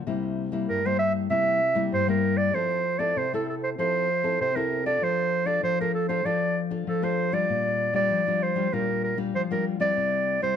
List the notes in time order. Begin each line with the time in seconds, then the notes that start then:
0.07 C3 G3 A#3 E4
0.52 G3 A#3 E4
0.69 G2 A#4
0.85 G3 A#3 E4 C5
0.99 E5
1.30 C3 G3 A#3 E4 E5
1.75 G3 A#3 E4
1.92 G2 C5
2.08 G3 A#3 E4 A#4
2.37 D5
2.53 F3 C4 E4 A4 C5
2.99 C4 E4 A4 D5
3.16 C3 C5
3.33 C4 E4 A4
3.49 A4
3.63 C5
3.78 F3 C4 E4 A4 C5
4.23 C4 E4 A4
4.41 C3 C5
4.56 C4 E4 A4 A#4
4.86 D4 F4 A4 D5
5.02 F3 C5
5.46 D4 F4 A4 D5
5.63 F3 C5
5.80 D4 F4 A4 A#4
5.94 A4
6.09 D4 F4 A4 C5
6.25 F3 D4 F4 A4 D5
6.70 D4 F4 A4
6.87 F3 A4
7.02 D4 F4 A4 C5
7.32 G3 D4 F4 D5
7.49 A#2
7.94 G3 D4 F4 D5
8.11 F3
8.27 G3 D4 F4
8.43 C5
8.56 G3 D4 F4
8.72 A#2 G3 D4 F4 A#4
9.04 A#4
9.17 G3 D4 F4
9.35 F3 C5
9.51 G3 D4 F4 A#4
9.80 G3 C4 E4 D5
9.97 C3
10.42 G3 C4 E4 C5